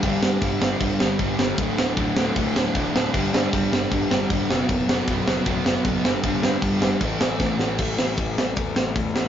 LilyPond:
<<
  \new Staff \with { instrumentName = "Distorted electric guitar" } { \clef bass \time 4/4 \key g \lydian \tempo 4 = 155 <g, d g>8 <g, d g>8 <g, d g>8 <g, d g>8 <g, d g>8 <g, d g>8 <g, d g>8 <g, d g>8 | <d, a, d>8 <d, a, d>8 <d, a, d>8 <d, a, d>8 <d, a, d>8 <d, a, d>8 <d, a, d>8 <d, a, d>8 | <g, d g>8 <g, d g>8 <g, d g>8 <g, d g>8 <g, d g>8 <g, d g>8 <g, d g>8 <b, fis b>8 | <b, fis b>8 <b, fis b>8 <b, fis b>8 <b, fis b>8 <b, fis b>8 <b, fis b>8 <b, fis b>8 <g, d g>8 |
<g, d g>8 <g, d g>8 <g, d g>8 <g, d g>8 <a, e a>8 <a, e a>8 <a, e a>8 <a, e a>8 | r1 | }
  \new Staff \with { instrumentName = "Overdriven electric guitar" } { \clef bass \time 4/4 \key g \lydian <g, d g>8 <g, d g>8 <g, d g>8 <g, d g>8 <g, d g>8 <g, d g>8 <g, d g>8 <g, d g>8 | <d, a, d>8 <d, a, d>8 <d, a, d>8 <d, a, d>8 <d, a, d>8 <d, a, d>8 <d, a, d>8 <d, a, d>8 | <g, d g>8 <g, d g>8 <g, d g>8 <g, d g>8 <g, d g>8 <g, d g>8 <g, d g>8 <b, fis b>8 | <b, fis b>8 <b, fis b>8 <b, fis b>8 <b, fis b>8 <b, fis b>8 <b, fis b>8 <b, fis b>8 <g, d g>8 |
<g, d g>8 <g, d g>8 <g, d g>8 <g, d g>8 <a, e a>8 <a, e a>8 <a, e a>8 <a, e a>8 | <a, e a>8 <a, e a>8 <a, e a>8 <a, e a>8 <a, e a>8 <a, e a>8 <a, e a>8 <a, e a>8 | }
  \new Staff \with { instrumentName = "Picked electric bass" } { \clef bass \time 4/4 \key g \lydian g,,8 g,8 g,,8 g,,8 g,,8 g,,8 g,,8 g,,8 | d,,8 d,,8 d,,8 d,,8 d,,8 d,,8 d,,8 d,,8 | g,,8 g,8 g,,8 g,,8 g,,8 g,,8 g,,8 fis,,8 | fis,,8 fis,,8 fis,,8 fis,,8 fis,,8 fis,,8 fis,,8 g,,8 |
g,,8 g,8 g,,8 g,,8 a,,8 a,,8 a,,8 a,,8 | a,,8 a,,8 a,,8 a,,8 e,8 a,,8 e,8 a,,8 | }
  \new DrumStaff \with { instrumentName = "Drums" } \drummode { \time 4/4 <cymc bd>8 sn8 <cymc bd>8 sn8 <cymc bd>8 sn8 <cymc bd>8 sn8 | <cymc bd>8 sn8 <cymc bd>8 sn8 <cymc bd>8 sn8 <cymc bd>8 sn8 | <cymc bd>8 sn8 <cymc bd>8 sn8 <cymc bd>8 sn8 <cymc bd>8 sn8 | <cymc bd>8 sn8 <cymc bd>8 sn8 <cymc bd>8 sn8 <cymc bd>8 sn8 |
<cymc bd>8 sn8 <cymc bd>8 sn8 <cymc bd>8 sn8 <bd sn>8 sn8 | <cymc bd>8 sn8 <hho bd>8 sn8 <hho bd>8 sn8 <hho bd>8 sn8 | }
>>